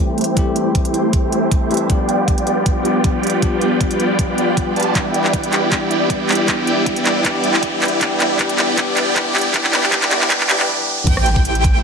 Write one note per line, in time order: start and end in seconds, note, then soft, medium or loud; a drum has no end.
0.00 0.35 E3 medium
0.00 0.36 G3 medium
0.00 0.35 A3 medium
0.00 0.37 A3 medium
0.00 1.87 A3 medium
0.00 0.38 C4 medium
0.00 0.35 E4 medium
0.00 0.35 G4 medium
0.00 0.39 G4 medium
0.00 1.87 G4 medium
0.00 0.35 C5 medium
0.00 1.87 C5 medium
0.00 0.35 G5 medium
0.00 riser medium
0.18 closed hi-hat soft
0.21 closed hi-hat medium
0.24 closed hi-hat medium
0.35 1.67 E3 medium
0.35 1.68 G3 medium
0.35 1.68 A3 medium
0.35 1.69 C4 medium
0.35 1.68 E4 medium
0.35 1.68 G4 medium
0.35 1.68 C5 medium
0.35 1.68 G5 medium
0.35 kick medium
0.35 closed hi-hat medium
0.39 1.69 G4 medium
0.56 closed hi-hat medium
0.75 kick loud
0.75 closed hi-hat medium
0.85 closed hi-hat medium
0.94 closed hi-hat medium
1.13 kick medium
1.13 closed hi-hat medium
1.32 closed hi-hat medium
1.51 kick medium
1.51 closed hi-hat medium
1.70 1.87 E3 medium
1.70 1.87 G3 medium
1.70 1.88 A3 medium
1.70 1.88 C4 medium
1.70 1.88 E4 medium
1.70 1.88 G4 medium
1.70 1.88 B4 medium
1.70 1.88 C5 medium
1.70 1.88 E5 medium
1.70 closed hi-hat soft
1.74 closed hi-hat medium
1.77 closed hi-hat medium
1.88 2.82 F3 medium
1.88 2.83 G3 medium
1.88 4.92 G3 medium
1.88 2.83 B3 medium
1.88 3.02 B3 medium
1.88 2.84 D4 medium
1.88 4.92 F4 medium
1.88 3.02 F4 medium
1.88 3.02 G4 medium
1.88 4.92 B4 medium
1.88 3.02 G5 loud
1.88 kick medium
1.88 closed hi-hat medium
1.92 2.84 G4 medium
2.09 closed hi-hat medium
2.28 kick medium
2.28 closed hi-hat medium
2.38 closed hi-hat medium
2.47 closed hi-hat medium
2.66 kick loud
2.66 closed hi-hat medium
2.83 3.39 F3 medium
2.83 3.40 G3 medium
2.83 3.40 B3 medium
2.83 3.41 D4 medium
2.83 3.41 G4 medium
2.83 closed hi-hat medium
3.04 3.40 B3 medium
3.04 3.40 F4 medium
3.04 3.40 G4 medium
3.04 3.40 D5 medium
3.04 3.40 G5 medium
3.04 kick loud
3.04 closed hi-hat medium
3.23 closed hi-hat soft
3.27 closed hi-hat medium
3.30 closed hi-hat medium
3.40 4.73 F3 medium
3.40 4.73 G3 medium
3.40 4.74 B3 medium
3.40 4.74 D4 medium
3.40 kick medium
3.40 closed hi-hat medium
3.44 4.75 G4 medium
3.61 closed hi-hat medium
3.81 kick loud
3.81 closed hi-hat medium
3.91 closed hi-hat medium
4.00 closed hi-hat medium
4.19 kick loud
4.19 closed hi-hat medium
4.38 closed hi-hat medium
4.57 kick medium
4.57 closed hi-hat medium
4.76 4.93 B3 medium
4.76 4.93 F4 medium
4.76 4.93 G4 medium
4.76 4.93 D5 medium
4.76 4.93 A5 medium
4.76 closed hi-hat soft
4.80 closed hi-hat medium
4.83 closed hi-hat medium
4.93 5.69 E3 medium
4.93 5.70 G3 medium
4.93 7.98 G3 medium
4.93 5.70 B3 medium
4.93 5.71 D4 medium
4.93 7.98 E4 medium
4.93 5.70 E4 medium
4.93 7.98 D5 medium
4.93 kick loud
4.93 clap soft
4.93 closed hi-hat medium
4.97 5.71 G4 medium
5.14 closed hi-hat medium
5.24 clap soft
5.33 kick loud
5.33 closed hi-hat medium
5.43 closed hi-hat medium
5.53 clap medium
5.53 closed hi-hat medium
5.70 6.45 E3 medium
5.70 6.46 G3 medium
5.70 6.47 B3 medium
5.70 6.47 D4 medium
5.70 6.47 E4 medium
5.70 kick loud
5.70 clap medium
5.70 closed hi-hat medium
5.74 6.48 G4 medium
5.91 closed hi-hat medium
6.10 kick loud
6.10 closed hi-hat medium
6.29 clap medium
6.29 closed hi-hat soft
6.32 closed hi-hat medium
6.35 closed hi-hat medium
6.46 7.21 E3 medium
6.46 7.22 G3 medium
6.46 7.23 B3 medium
6.46 7.24 D4 medium
6.46 kick medium
6.46 clap medium
6.46 closed hi-hat medium
6.50 7.24 G4 medium
6.67 closed hi-hat medium
6.86 kick loud
6.86 closed hi-hat medium
6.96 closed hi-hat medium
7.05 clap medium
7.05 closed hi-hat medium
7.22 7.98 E3 medium
7.22 7.99 G3 medium
7.22 8.00 B3 medium
7.22 8.00 D4 medium
7.22 8.00 E4 medium
7.22 8.00 G4 medium
7.22 8.00 D5 medium
7.22 kick loud
7.22 clap medium
7.22 closed hi-hat medium
7.26 8.01 G4 medium
7.44 closed hi-hat medium
7.54 clap medium
7.63 kick loud
7.63 closed hi-hat medium
7.82 clap medium
7.82 closed hi-hat soft
7.85 closed hi-hat medium
7.88 closed hi-hat medium
7.99 8.36 E3 medium
7.99 8.37 G3 medium
7.99 8.38 B3 medium
7.99 8.38 D4 medium
7.99 8.38 E4 medium
7.99 8.38 G4 medium
7.99 8.39 G4 medium
7.99 10.66 D5 loud
7.99 8.38 D5 medium
7.99 8.38 G5 medium
7.99 kick loud
7.99 clap medium
7.99 closed hi-hat medium
8.20 clap medium
8.20 closed hi-hat medium
8.37 8.74 E3 medium
8.37 8.76 G3 medium
8.37 8.76 B3 medium
8.37 8.77 D4 medium
8.37 8.76 G4 medium
8.37 8.76 D5 medium
8.37 kick loud
8.37 clap medium
8.37 closed hi-hat medium
8.41 8.77 G4 medium
8.49 closed hi-hat medium
8.58 clap medium
8.58 closed hi-hat medium
8.76 9.12 E3 medium
8.76 9.13 G3 medium
8.76 9.14 B3 medium
8.76 9.15 D4 medium
8.76 9.14 E4 medium
8.76 9.14 G4 medium
8.76 9.15 G4 medium
8.76 9.14 D5 medium
8.76 9.14 G5 medium
8.76 kick loud
8.76 clap medium
8.76 closed hi-hat medium
8.97 clap medium
8.97 closed hi-hat medium
9.14 9.51 E3 medium
9.14 9.52 G3 medium
9.14 9.53 B3 medium
9.14 9.53 D4 medium
9.14 9.53 E4 medium
9.14 9.54 G4 medium
9.14 kick loud
9.14 clap medium
9.14 closed hi-hat medium
9.35 clap medium
9.35 closed hi-hat soft
9.38 closed hi-hat medium
9.41 closed hi-hat medium
9.52 9.70 E3 medium
9.52 9.71 G3 medium
9.52 9.72 B3 medium
9.52 9.72 D4 medium
9.52 9.72 E4 medium
9.52 9.72 G4 medium
9.52 9.72 D5 medium
9.52 9.72 G5 loud
9.52 kick loud
9.52 clap medium
9.52 closed hi-hat medium
9.56 9.73 G4 medium
9.64 clap medium
9.71 9.89 E3 medium
9.71 9.90 G3 medium
9.71 9.91 B3 medium
9.71 9.91 D4 medium
9.71 9.91 E4 medium
9.71 9.91 G4 medium
9.71 9.92 G4 medium
9.71 9.91 D5 medium
9.71 9.91 G5 medium
9.71 clap medium
9.71 closed hi-hat medium
9.83 clap medium
9.90 10.08 E3 medium
9.90 10.09 G3 medium
9.90 10.10 B3 medium
9.90 10.11 D4 medium
9.90 10.10 G4 medium
9.90 10.11 G4 medium
9.90 10.10 G5 medium
9.90 kick loud
9.90 clap loud
9.90 closed hi-hat medium
10.02 clap medium
10.02 closed hi-hat medium
10.10 10.27 E3 medium
10.10 10.28 G3 medium
10.10 10.29 B3 medium
10.10 10.30 D4 medium
10.10 10.29 E4 medium
10.10 10.29 G4 medium
10.10 10.30 G4 medium
10.10 10.29 D5 medium
10.10 10.29 G5 loud
10.10 clap loud
10.10 closed hi-hat medium
10.21 clap medium
10.29 10.46 E3 medium
10.29 10.47 G3 medium
10.29 10.48 B3 medium
10.29 10.49 D4 medium
10.29 10.48 G4 medium
10.29 10.49 G4 medium
10.29 10.48 D5 medium
10.29 10.48 G5 loud
10.29 kick loud
10.29 clap loud
10.29 closed hi-hat medium
10.40 clap medium
10.48 10.66 E3 medium
10.48 10.67 G3 medium
10.48 10.67 B3 medium
10.48 10.68 D4 medium
10.48 10.67 E4 medium
10.48 10.67 G4 medium
10.48 10.67 D5 medium
10.48 10.67 G5 loud
10.48 clap loud
10.48 closed hi-hat medium
10.52 10.68 G4 medium
10.59 clap medium
10.69 high tom medium
10.79 high tom medium
10.98 mid tom medium
11.07 11.83 A1 loud
11.07 11.83 A3 medium
11.07 11.83 E4 medium
11.07 11.83 G4 medium
11.07 11.83 C5 medium
11.07 11.83 G5 medium
11.07 11.83 G5 loud
11.07 kick loud
11.07 closed hi-hat medium
11.07 crash loud
11.07 impact medium
11.17 cross-stick medium
11.26 closed hi-hat medium
11.36 kick loud
11.45 closed hi-hat medium
11.55 closed hi-hat medium
11.64 kick loud
11.64 closed hi-hat medium